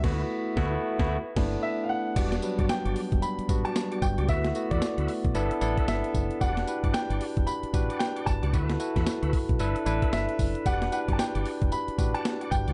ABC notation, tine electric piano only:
X:1
M:4/4
L:1/16
Q:"Swing 16ths" 1/4=113
K:Em
V:1 name="Tine electric piano"
[A,B,EF]2 z2 [A,B,EF]2 z [A,B,EF]2 z [A,B,DE]2 z4 | [G,B,DF] z [F,G,B,D]4- [F,G,B,D] z3 [G,B,DF]4 z2 | [A,B,EF] z [A,B,EF]4- [A,B,EF] z [B,DEA]2 [B,DEA]4 z2 | [DFGB] z [DEGB]4- [DEGB] z3 [DFGB]4 z2 |
[EFAB] z [EFAB]4- [EFAB] z [DEAB]2 [DEAB]4 z2 | [DFGB] z [DEGB]4- [DEGB] z3 [DFGB]4 z2 |]